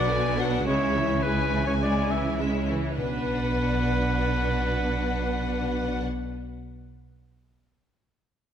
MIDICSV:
0, 0, Header, 1, 8, 480
1, 0, Start_track
1, 0, Tempo, 574713
1, 554, Time_signature, 4, 2, 24, 8
1, 7127, End_track
2, 0, Start_track
2, 0, Title_t, "Violin section"
2, 0, Program_c, 0, 48
2, 76, Note_on_c, 0, 80, 44
2, 315, Note_off_c, 0, 80, 0
2, 324, Note_on_c, 0, 78, 40
2, 556, Note_on_c, 0, 76, 38
2, 558, Note_off_c, 0, 78, 0
2, 1023, Note_off_c, 0, 76, 0
2, 1030, Note_on_c, 0, 80, 38
2, 1980, Note_off_c, 0, 80, 0
2, 1993, Note_on_c, 0, 76, 29
2, 2237, Note_off_c, 0, 76, 0
2, 2490, Note_on_c, 0, 78, 29
2, 5033, Note_off_c, 0, 78, 0
2, 7127, End_track
3, 0, Start_track
3, 0, Title_t, "Oboe"
3, 0, Program_c, 1, 68
3, 0, Note_on_c, 1, 74, 62
3, 322, Note_off_c, 1, 74, 0
3, 557, Note_on_c, 1, 73, 57
3, 1024, Note_on_c, 1, 71, 51
3, 1036, Note_off_c, 1, 73, 0
3, 1389, Note_off_c, 1, 71, 0
3, 1394, Note_on_c, 1, 73, 41
3, 1448, Note_off_c, 1, 73, 0
3, 1525, Note_on_c, 1, 74, 42
3, 1761, Note_on_c, 1, 76, 40
3, 1774, Note_off_c, 1, 74, 0
3, 2002, Note_off_c, 1, 76, 0
3, 2494, Note_on_c, 1, 71, 40
3, 5035, Note_off_c, 1, 71, 0
3, 7127, End_track
4, 0, Start_track
4, 0, Title_t, "Violin section"
4, 0, Program_c, 2, 48
4, 73, Note_on_c, 2, 66, 34
4, 78, Note_on_c, 2, 59, 35
4, 306, Note_on_c, 2, 62, 35
4, 306, Note_on_c, 2, 71, 35
4, 313, Note_off_c, 2, 66, 0
4, 316, Note_off_c, 2, 59, 0
4, 549, Note_off_c, 2, 62, 0
4, 549, Note_off_c, 2, 71, 0
4, 553, Note_on_c, 2, 61, 35
4, 559, Note_on_c, 2, 64, 35
4, 775, Note_off_c, 2, 61, 0
4, 779, Note_off_c, 2, 64, 0
4, 794, Note_on_c, 2, 61, 30
4, 796, Note_on_c, 2, 64, 31
4, 1019, Note_off_c, 2, 64, 0
4, 1021, Note_off_c, 2, 61, 0
4, 1029, Note_on_c, 2, 64, 30
4, 1031, Note_on_c, 2, 61, 32
4, 1256, Note_off_c, 2, 64, 0
4, 1257, Note_off_c, 2, 61, 0
4, 1266, Note_on_c, 2, 64, 29
4, 1267, Note_on_c, 2, 61, 30
4, 1500, Note_off_c, 2, 64, 0
4, 1505, Note_off_c, 2, 61, 0
4, 1510, Note_on_c, 2, 64, 29
4, 1515, Note_on_c, 2, 61, 33
4, 1737, Note_off_c, 2, 64, 0
4, 1740, Note_off_c, 2, 61, 0
4, 1761, Note_on_c, 2, 61, 28
4, 1762, Note_on_c, 2, 64, 28
4, 1975, Note_off_c, 2, 61, 0
4, 1980, Note_off_c, 2, 64, 0
4, 1985, Note_on_c, 2, 61, 27
4, 1990, Note_on_c, 2, 64, 26
4, 2219, Note_off_c, 2, 61, 0
4, 2221, Note_off_c, 2, 64, 0
4, 2229, Note_on_c, 2, 61, 25
4, 2231, Note_on_c, 2, 64, 28
4, 2480, Note_off_c, 2, 61, 0
4, 2481, Note_off_c, 2, 64, 0
4, 2481, Note_on_c, 2, 71, 31
4, 5028, Note_off_c, 2, 71, 0
4, 7127, End_track
5, 0, Start_track
5, 0, Title_t, "Viola section"
5, 0, Program_c, 3, 48
5, 79, Note_on_c, 3, 50, 37
5, 80, Note_on_c, 3, 59, 33
5, 316, Note_off_c, 3, 50, 0
5, 316, Note_on_c, 3, 54, 36
5, 317, Note_off_c, 3, 59, 0
5, 317, Note_on_c, 3, 62, 37
5, 555, Note_off_c, 3, 54, 0
5, 555, Note_off_c, 3, 62, 0
5, 564, Note_on_c, 3, 56, 38
5, 567, Note_off_c, 3, 56, 0
5, 567, Note_on_c, 3, 56, 34
5, 783, Note_off_c, 3, 56, 0
5, 802, Note_on_c, 3, 52, 28
5, 804, Note_off_c, 3, 52, 0
5, 804, Note_on_c, 3, 52, 34
5, 1037, Note_off_c, 3, 52, 0
5, 1046, Note_on_c, 3, 56, 29
5, 1048, Note_off_c, 3, 56, 0
5, 1048, Note_on_c, 3, 56, 27
5, 1280, Note_off_c, 3, 56, 0
5, 1280, Note_on_c, 3, 52, 26
5, 1285, Note_off_c, 3, 52, 0
5, 1285, Note_on_c, 3, 52, 28
5, 1520, Note_off_c, 3, 52, 0
5, 1523, Note_on_c, 3, 56, 26
5, 1526, Note_off_c, 3, 56, 0
5, 1526, Note_on_c, 3, 56, 30
5, 1746, Note_off_c, 3, 56, 0
5, 1765, Note_on_c, 3, 52, 26
5, 2004, Note_off_c, 3, 52, 0
5, 2007, Note_on_c, 3, 56, 29
5, 2008, Note_off_c, 3, 56, 0
5, 2008, Note_on_c, 3, 56, 26
5, 2250, Note_off_c, 3, 56, 0
5, 2251, Note_on_c, 3, 52, 28
5, 2252, Note_off_c, 3, 52, 0
5, 2252, Note_on_c, 3, 52, 28
5, 2492, Note_off_c, 3, 52, 0
5, 2494, Note_on_c, 3, 62, 34
5, 5035, Note_off_c, 3, 62, 0
5, 7127, End_track
6, 0, Start_track
6, 0, Title_t, "Cello section"
6, 0, Program_c, 4, 48
6, 0, Note_on_c, 4, 47, 47
6, 522, Note_off_c, 4, 47, 0
6, 557, Note_on_c, 4, 49, 38
6, 2288, Note_off_c, 4, 49, 0
6, 2494, Note_on_c, 4, 47, 30
6, 5035, Note_off_c, 4, 47, 0
6, 7127, End_track
7, 0, Start_track
7, 0, Title_t, "Timpani"
7, 0, Program_c, 5, 47
7, 2490, Note_on_c, 5, 47, 25
7, 5617, Note_off_c, 5, 47, 0
7, 7127, End_track
8, 0, Start_track
8, 0, Title_t, "Double bass section"
8, 0, Program_c, 6, 48
8, 0, Note_on_c, 6, 35, 47
8, 522, Note_off_c, 6, 35, 0
8, 558, Note_on_c, 6, 37, 43
8, 2289, Note_off_c, 6, 37, 0
8, 2493, Note_on_c, 6, 35, 35
8, 5034, Note_off_c, 6, 35, 0
8, 7127, End_track
0, 0, End_of_file